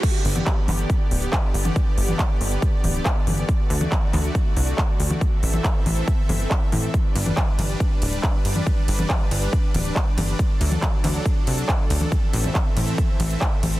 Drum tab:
CC |x---------------|----------------|----------------|----------------|
RD |----------------|----------------|----------------|----------------|
HH |x-oxx-oxx-oxx-ox|x-oxx-oxx-oxx-ox|x-oxx-oxx-oxx-ox|x-oxx-oxx-oxx-ox|
CP |----x-x-----x---|----x-------x---|----x-x-----x---|----x-------x---|
CG |---o--o--------o|---o------o---o-|---o--o--------o|---o--o---o---o-|
BD |o---o---o---o---|o---o---o---o---|o---o---o---o---|o---o---o---o---|

CC |----------------|----------------|----------------|----------------|
RD |--x---x---x---x-|--x---x---x---x-|--x---x---x---x-|--x---x---x---x-|
HH |x-oxx-oxx-oxx-ox|x-oxx-oxx-oxx-ox|x-oxx-oxx-oxx-ox|x-oxx-oxx-oxx-ox|
CP |----x-x-----x---|----x-------x---|----x-x-----x---|----x-------x---|
CG |---o--o--------o|---o------o---o-|---o--o--------o|---o--o---o---o-|
BD |o---o---o---o---|o---o---o---o---|o---o---o---o---|o---o---o---o---|